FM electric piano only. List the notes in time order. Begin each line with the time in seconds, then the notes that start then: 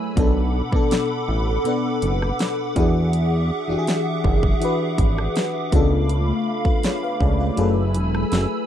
Already playing: F#3 E4 G#4 A4 A#4 B4
0.16 B2 B3 D4
0.20 A4
0.72 B2 B3 D4
0.76 A4
1.64 B2 B3 D4
1.68 B4
2.75 E3 D4 F#4
2.79 G#4
3.68 E3 D4 F#4
3.72 G4
3.79 G#4
4.60 E3 D4 F#4
4.65 B4
5.71 C#3 B3 D4 F4
5.76 A4
6.66 F4 B4
6.85 G#4 C#5
7.03 B4 F5
7.22 A4 D5
7.40 F4 B4
7.56 F#3 E4 G#4 A4
7.60 B4